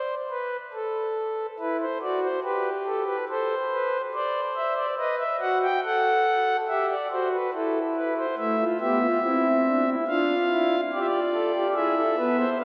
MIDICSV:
0, 0, Header, 1, 2, 480
1, 0, Start_track
1, 0, Key_signature, 0, "minor"
1, 0, Tempo, 849858
1, 893, Time_signature, 4, 2, 24, 8
1, 7139, End_track
2, 0, Start_track
2, 0, Title_t, "Pipe organ"
2, 0, Program_c, 0, 19
2, 0, Note_on_c, 0, 72, 69
2, 84, Note_off_c, 0, 72, 0
2, 172, Note_on_c, 0, 71, 59
2, 320, Note_off_c, 0, 71, 0
2, 416, Note_on_c, 0, 69, 63
2, 828, Note_off_c, 0, 69, 0
2, 901, Note_on_c, 0, 71, 55
2, 902, Note_on_c, 0, 64, 64
2, 1001, Note_off_c, 0, 71, 0
2, 1022, Note_on_c, 0, 72, 50
2, 1048, Note_off_c, 0, 64, 0
2, 1121, Note_off_c, 0, 72, 0
2, 1137, Note_on_c, 0, 66, 62
2, 1140, Note_on_c, 0, 74, 58
2, 1240, Note_off_c, 0, 74, 0
2, 1255, Note_on_c, 0, 72, 58
2, 1284, Note_off_c, 0, 66, 0
2, 1356, Note_off_c, 0, 72, 0
2, 1374, Note_on_c, 0, 71, 54
2, 1376, Note_on_c, 0, 67, 69
2, 1521, Note_off_c, 0, 71, 0
2, 1616, Note_on_c, 0, 69, 57
2, 1716, Note_off_c, 0, 69, 0
2, 1733, Note_on_c, 0, 71, 56
2, 1785, Note_off_c, 0, 67, 0
2, 1834, Note_off_c, 0, 71, 0
2, 1858, Note_on_c, 0, 69, 76
2, 1861, Note_on_c, 0, 72, 56
2, 2004, Note_off_c, 0, 69, 0
2, 2101, Note_on_c, 0, 71, 66
2, 2247, Note_off_c, 0, 71, 0
2, 2269, Note_off_c, 0, 72, 0
2, 2341, Note_on_c, 0, 72, 77
2, 2341, Note_on_c, 0, 74, 62
2, 2486, Note_off_c, 0, 74, 0
2, 2579, Note_on_c, 0, 76, 62
2, 2678, Note_off_c, 0, 76, 0
2, 2691, Note_on_c, 0, 74, 58
2, 2748, Note_off_c, 0, 72, 0
2, 2793, Note_off_c, 0, 74, 0
2, 2809, Note_on_c, 0, 71, 72
2, 2812, Note_on_c, 0, 75, 61
2, 2913, Note_off_c, 0, 75, 0
2, 2928, Note_on_c, 0, 76, 58
2, 2957, Note_off_c, 0, 71, 0
2, 3030, Note_off_c, 0, 76, 0
2, 3052, Note_on_c, 0, 78, 62
2, 3053, Note_on_c, 0, 66, 68
2, 3152, Note_off_c, 0, 78, 0
2, 3180, Note_on_c, 0, 79, 65
2, 3199, Note_off_c, 0, 66, 0
2, 3277, Note_off_c, 0, 79, 0
2, 3299, Note_on_c, 0, 69, 83
2, 3301, Note_on_c, 0, 78, 59
2, 3708, Note_off_c, 0, 69, 0
2, 3709, Note_off_c, 0, 78, 0
2, 3775, Note_on_c, 0, 76, 67
2, 3777, Note_on_c, 0, 67, 73
2, 3875, Note_off_c, 0, 76, 0
2, 3900, Note_on_c, 0, 74, 66
2, 3923, Note_off_c, 0, 67, 0
2, 3998, Note_off_c, 0, 74, 0
2, 4015, Note_on_c, 0, 66, 72
2, 4018, Note_on_c, 0, 72, 63
2, 4116, Note_off_c, 0, 72, 0
2, 4143, Note_on_c, 0, 71, 54
2, 4161, Note_off_c, 0, 66, 0
2, 4239, Note_off_c, 0, 71, 0
2, 4256, Note_on_c, 0, 69, 66
2, 4258, Note_on_c, 0, 64, 73
2, 4401, Note_off_c, 0, 69, 0
2, 4498, Note_on_c, 0, 71, 66
2, 4596, Note_off_c, 0, 71, 0
2, 4620, Note_on_c, 0, 72, 61
2, 4666, Note_off_c, 0, 64, 0
2, 4718, Note_off_c, 0, 72, 0
2, 4735, Note_on_c, 0, 57, 82
2, 4736, Note_on_c, 0, 64, 59
2, 4736, Note_on_c, 0, 76, 64
2, 4836, Note_off_c, 0, 64, 0
2, 4856, Note_on_c, 0, 65, 60
2, 4882, Note_off_c, 0, 57, 0
2, 4883, Note_off_c, 0, 76, 0
2, 4956, Note_off_c, 0, 65, 0
2, 4973, Note_on_c, 0, 59, 74
2, 4973, Note_on_c, 0, 76, 67
2, 4976, Note_on_c, 0, 67, 66
2, 5076, Note_off_c, 0, 67, 0
2, 5091, Note_on_c, 0, 65, 70
2, 5121, Note_off_c, 0, 59, 0
2, 5193, Note_off_c, 0, 65, 0
2, 5206, Note_on_c, 0, 60, 79
2, 5206, Note_on_c, 0, 64, 68
2, 5356, Note_off_c, 0, 64, 0
2, 5456, Note_on_c, 0, 62, 65
2, 5556, Note_off_c, 0, 62, 0
2, 5570, Note_on_c, 0, 64, 64
2, 5591, Note_off_c, 0, 76, 0
2, 5621, Note_off_c, 0, 60, 0
2, 5673, Note_off_c, 0, 64, 0
2, 5690, Note_on_c, 0, 62, 88
2, 5691, Note_on_c, 0, 65, 67
2, 5692, Note_on_c, 0, 77, 64
2, 5838, Note_off_c, 0, 62, 0
2, 5928, Note_on_c, 0, 64, 73
2, 6077, Note_off_c, 0, 64, 0
2, 6103, Note_off_c, 0, 65, 0
2, 6103, Note_off_c, 0, 77, 0
2, 6172, Note_on_c, 0, 65, 80
2, 6172, Note_on_c, 0, 74, 67
2, 6174, Note_on_c, 0, 67, 70
2, 6204, Note_off_c, 0, 74, 0
2, 6214, Note_on_c, 0, 76, 61
2, 6250, Note_off_c, 0, 76, 0
2, 6250, Note_on_c, 0, 74, 67
2, 6321, Note_off_c, 0, 67, 0
2, 6402, Note_on_c, 0, 69, 68
2, 6508, Note_off_c, 0, 69, 0
2, 6524, Note_on_c, 0, 67, 73
2, 6583, Note_off_c, 0, 65, 0
2, 6594, Note_off_c, 0, 74, 0
2, 6629, Note_off_c, 0, 67, 0
2, 6637, Note_on_c, 0, 76, 64
2, 6638, Note_on_c, 0, 64, 77
2, 6638, Note_on_c, 0, 68, 67
2, 6746, Note_off_c, 0, 68, 0
2, 6757, Note_on_c, 0, 69, 64
2, 6791, Note_off_c, 0, 64, 0
2, 6866, Note_off_c, 0, 69, 0
2, 6875, Note_on_c, 0, 59, 69
2, 6875, Note_on_c, 0, 71, 61
2, 6986, Note_off_c, 0, 71, 0
2, 6995, Note_on_c, 0, 72, 69
2, 7030, Note_off_c, 0, 59, 0
2, 7058, Note_off_c, 0, 76, 0
2, 7106, Note_off_c, 0, 72, 0
2, 7120, Note_on_c, 0, 62, 80
2, 7120, Note_on_c, 0, 71, 69
2, 7120, Note_on_c, 0, 77, 63
2, 7139, Note_off_c, 0, 62, 0
2, 7139, Note_off_c, 0, 71, 0
2, 7139, Note_off_c, 0, 77, 0
2, 7139, End_track
0, 0, End_of_file